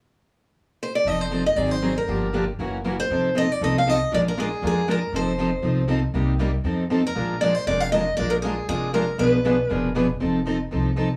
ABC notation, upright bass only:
X:1
M:4/4
L:1/8
Q:"Swing" 1/4=236
K:Bb
V:1 name="Upright bass" clef=bass
z8 | F,,,4 _A,,,4 | G,,,4 _G,,,4 | F,,,4 C,,4 |
B,,,4 F,,4 | F,,,4 C,,4 | C,,4 F,,4 | B,,,4 F,,,4 |
B,,,4 F,,,4 | =B,,,4 F,,,4 | F,,,4 C,,4 |]